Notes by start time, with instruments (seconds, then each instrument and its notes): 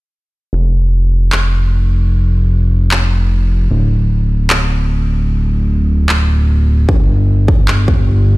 0.53 analog synth bass F1
1.32 clap
2.91 clap
3.71 analog synth bass D1
4.50 clap
6.09 clap
6.89 analog synth bass G1, kick
7.48 kick
7.68 clap
7.88 kick